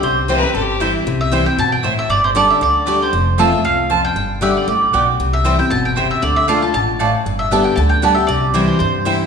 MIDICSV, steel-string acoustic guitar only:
0, 0, Header, 1, 2, 480
1, 0, Start_track
1, 0, Key_signature, 0, "major"
1, 0, Tempo, 257954
1, 61, Time_signature, 4, 2, 24, 8
1, 17240, End_track
2, 0, Start_track
2, 0, Title_t, "Steel-string acoustic guitar"
2, 0, Program_c, 0, 25
2, 56, Note_on_c, 0, 48, 86
2, 527, Note_on_c, 0, 52, 97
2, 541, Note_on_c, 0, 55, 82
2, 546, Note_on_c, 0, 60, 90
2, 556, Note_on_c, 0, 64, 93
2, 770, Note_off_c, 0, 64, 0
2, 784, Note_off_c, 0, 52, 0
2, 791, Note_off_c, 0, 55, 0
2, 792, Note_on_c, 0, 64, 54
2, 793, Note_off_c, 0, 60, 0
2, 822, Note_on_c, 0, 60, 44
2, 975, Note_off_c, 0, 48, 0
2, 1008, Note_off_c, 0, 64, 0
2, 1018, Note_on_c, 0, 43, 75
2, 1023, Note_off_c, 0, 60, 0
2, 1493, Note_on_c, 0, 52, 76
2, 1503, Note_on_c, 0, 55, 85
2, 1518, Note_on_c, 0, 60, 80
2, 1527, Note_on_c, 0, 64, 82
2, 1935, Note_off_c, 0, 43, 0
2, 1955, Note_off_c, 0, 52, 0
2, 1960, Note_off_c, 0, 55, 0
2, 1968, Note_off_c, 0, 60, 0
2, 1972, Note_off_c, 0, 64, 0
2, 1987, Note_on_c, 0, 48, 94
2, 2447, Note_on_c, 0, 52, 75
2, 2460, Note_on_c, 0, 55, 94
2, 2467, Note_on_c, 0, 60, 96
2, 2476, Note_on_c, 0, 64, 97
2, 2693, Note_off_c, 0, 64, 0
2, 2703, Note_off_c, 0, 52, 0
2, 2710, Note_off_c, 0, 55, 0
2, 2713, Note_off_c, 0, 60, 0
2, 2716, Note_on_c, 0, 64, 55
2, 2744, Note_on_c, 0, 60, 45
2, 2900, Note_off_c, 0, 48, 0
2, 2930, Note_off_c, 0, 64, 0
2, 2944, Note_off_c, 0, 60, 0
2, 2949, Note_on_c, 0, 47, 83
2, 3403, Note_off_c, 0, 47, 0
2, 3431, Note_on_c, 0, 45, 84
2, 3884, Note_off_c, 0, 45, 0
2, 3901, Note_on_c, 0, 43, 81
2, 4369, Note_on_c, 0, 50, 88
2, 4382, Note_on_c, 0, 55, 90
2, 4392, Note_on_c, 0, 62, 96
2, 4399, Note_on_c, 0, 67, 97
2, 4817, Note_off_c, 0, 43, 0
2, 4833, Note_off_c, 0, 50, 0
2, 4839, Note_off_c, 0, 55, 0
2, 4844, Note_off_c, 0, 62, 0
2, 4848, Note_off_c, 0, 67, 0
2, 4858, Note_on_c, 0, 50, 86
2, 5312, Note_off_c, 0, 50, 0
2, 5334, Note_on_c, 0, 50, 88
2, 5343, Note_on_c, 0, 55, 89
2, 5355, Note_on_c, 0, 62, 89
2, 5361, Note_on_c, 0, 67, 103
2, 5795, Note_off_c, 0, 50, 0
2, 5800, Note_off_c, 0, 55, 0
2, 5806, Note_off_c, 0, 62, 0
2, 5809, Note_off_c, 0, 67, 0
2, 5823, Note_on_c, 0, 41, 91
2, 6294, Note_on_c, 0, 53, 89
2, 6307, Note_on_c, 0, 57, 90
2, 6317, Note_on_c, 0, 60, 101
2, 6327, Note_on_c, 0, 65, 86
2, 6537, Note_off_c, 0, 65, 0
2, 6547, Note_off_c, 0, 53, 0
2, 6553, Note_off_c, 0, 57, 0
2, 6558, Note_off_c, 0, 60, 0
2, 6559, Note_on_c, 0, 65, 53
2, 6592, Note_on_c, 0, 60, 45
2, 6738, Note_off_c, 0, 41, 0
2, 6772, Note_off_c, 0, 65, 0
2, 6783, Note_on_c, 0, 40, 83
2, 6788, Note_off_c, 0, 60, 0
2, 7241, Note_off_c, 0, 40, 0
2, 7255, Note_on_c, 0, 41, 85
2, 7716, Note_off_c, 0, 41, 0
2, 7741, Note_on_c, 0, 43, 84
2, 8205, Note_on_c, 0, 50, 85
2, 8221, Note_on_c, 0, 55, 93
2, 8229, Note_on_c, 0, 59, 101
2, 8235, Note_on_c, 0, 67, 101
2, 8658, Note_off_c, 0, 43, 0
2, 8672, Note_off_c, 0, 50, 0
2, 8680, Note_off_c, 0, 55, 0
2, 8684, Note_off_c, 0, 59, 0
2, 8687, Note_off_c, 0, 67, 0
2, 8702, Note_on_c, 0, 45, 81
2, 9161, Note_off_c, 0, 45, 0
2, 9189, Note_on_c, 0, 47, 81
2, 9645, Note_off_c, 0, 47, 0
2, 9673, Note_on_c, 0, 48, 77
2, 10135, Note_on_c, 0, 52, 87
2, 10147, Note_on_c, 0, 55, 89
2, 10157, Note_on_c, 0, 60, 94
2, 10164, Note_on_c, 0, 64, 89
2, 10376, Note_off_c, 0, 64, 0
2, 10390, Note_off_c, 0, 52, 0
2, 10396, Note_off_c, 0, 55, 0
2, 10398, Note_on_c, 0, 64, 65
2, 10400, Note_off_c, 0, 60, 0
2, 10427, Note_on_c, 0, 60, 52
2, 10586, Note_off_c, 0, 48, 0
2, 10613, Note_off_c, 0, 64, 0
2, 10628, Note_off_c, 0, 60, 0
2, 10631, Note_on_c, 0, 47, 78
2, 11086, Note_off_c, 0, 47, 0
2, 11118, Note_on_c, 0, 48, 87
2, 11570, Note_off_c, 0, 48, 0
2, 11585, Note_on_c, 0, 50, 92
2, 12036, Note_off_c, 0, 50, 0
2, 12059, Note_on_c, 0, 50, 80
2, 12072, Note_on_c, 0, 57, 84
2, 12076, Note_on_c, 0, 62, 98
2, 12084, Note_on_c, 0, 65, 96
2, 12304, Note_off_c, 0, 65, 0
2, 12312, Note_off_c, 0, 50, 0
2, 12319, Note_off_c, 0, 57, 0
2, 12321, Note_off_c, 0, 62, 0
2, 12326, Note_on_c, 0, 65, 62
2, 12357, Note_on_c, 0, 62, 49
2, 12538, Note_off_c, 0, 65, 0
2, 12544, Note_on_c, 0, 47, 82
2, 12553, Note_off_c, 0, 62, 0
2, 13004, Note_off_c, 0, 47, 0
2, 13026, Note_on_c, 0, 45, 84
2, 13485, Note_off_c, 0, 45, 0
2, 13513, Note_on_c, 0, 43, 84
2, 13981, Note_on_c, 0, 50, 82
2, 13994, Note_on_c, 0, 55, 91
2, 14000, Note_on_c, 0, 59, 103
2, 14014, Note_on_c, 0, 67, 114
2, 14426, Note_off_c, 0, 43, 0
2, 14442, Note_off_c, 0, 50, 0
2, 14449, Note_off_c, 0, 55, 0
2, 14451, Note_off_c, 0, 59, 0
2, 14458, Note_off_c, 0, 67, 0
2, 14465, Note_on_c, 0, 50, 77
2, 14906, Note_off_c, 0, 50, 0
2, 14929, Note_on_c, 0, 50, 91
2, 14942, Note_on_c, 0, 55, 98
2, 14950, Note_on_c, 0, 59, 91
2, 14958, Note_on_c, 0, 67, 93
2, 15174, Note_off_c, 0, 67, 0
2, 15187, Note_off_c, 0, 50, 0
2, 15193, Note_off_c, 0, 55, 0
2, 15196, Note_on_c, 0, 67, 55
2, 15198, Note_off_c, 0, 59, 0
2, 15227, Note_on_c, 0, 59, 48
2, 15412, Note_off_c, 0, 67, 0
2, 15416, Note_on_c, 0, 48, 98
2, 15427, Note_off_c, 0, 59, 0
2, 15886, Note_on_c, 0, 52, 90
2, 15896, Note_on_c, 0, 55, 93
2, 15903, Note_on_c, 0, 60, 102
2, 15915, Note_on_c, 0, 64, 97
2, 16335, Note_off_c, 0, 48, 0
2, 16353, Note_off_c, 0, 52, 0
2, 16358, Note_off_c, 0, 55, 0
2, 16361, Note_off_c, 0, 60, 0
2, 16367, Note_off_c, 0, 64, 0
2, 16373, Note_on_c, 0, 43, 83
2, 16845, Note_on_c, 0, 52, 75
2, 16858, Note_on_c, 0, 55, 97
2, 16864, Note_on_c, 0, 60, 86
2, 16873, Note_on_c, 0, 64, 95
2, 17240, Note_off_c, 0, 43, 0
2, 17240, Note_off_c, 0, 52, 0
2, 17240, Note_off_c, 0, 55, 0
2, 17240, Note_off_c, 0, 60, 0
2, 17240, Note_off_c, 0, 64, 0
2, 17240, End_track
0, 0, End_of_file